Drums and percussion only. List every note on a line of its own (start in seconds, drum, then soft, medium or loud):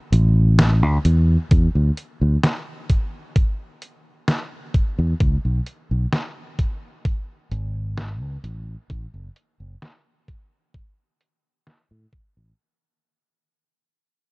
0.13 closed hi-hat medium
0.59 snare loud
0.59 closed hi-hat medium
1.05 closed hi-hat medium
1.51 kick loud
1.51 closed hi-hat medium
1.97 closed hi-hat medium
2.43 snare loud
2.43 closed hi-hat medium
2.89 kick medium
2.89 closed hi-hat medium
3.36 kick loud
3.36 closed hi-hat medium
3.82 closed hi-hat medium
4.28 snare loud
4.28 closed hi-hat medium
4.74 kick loud
4.74 closed hi-hat medium
5.20 kick loud
5.20 closed hi-hat medium
5.67 closed hi-hat medium
6.13 snare loud
6.13 closed hi-hat medium
6.59 kick medium
6.59 closed hi-hat medium
7.05 kick loud
7.05 closed hi-hat medium
7.51 closed hi-hat medium
7.97 snare loud
7.97 closed hi-hat medium
8.44 closed hi-hat medium
8.90 kick loud
8.90 closed hi-hat medium
9.36 closed hi-hat medium
9.82 snare loud
9.82 closed hi-hat medium
10.28 kick medium
10.28 closed hi-hat medium
10.74 kick loud
10.74 closed hi-hat medium
11.21 closed hi-hat medium
11.67 snare loud
11.67 closed hi-hat medium
12.13 kick loud
12.13 closed hi-hat medium